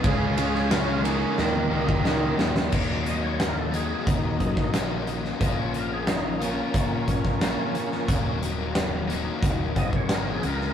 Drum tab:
CC |----------------|x---------------|----------------|----------------|
RD |x-x-x-x---------|----------------|----------------|----------------|
HH |----------------|--x-x-x-x-x-x-x-|x-x-x-x-x-x-x-x-|x-x-x-x-x-x-x-x-|
SD |---oo---o---o-oo|----o------oo--o|----o------oo--o|----o-------o--o|
T1 |---------o------|----------------|----------------|----------------|
BD |o----------o----|o-------o-oo----|o-------o-oo----|o-------o-oo----|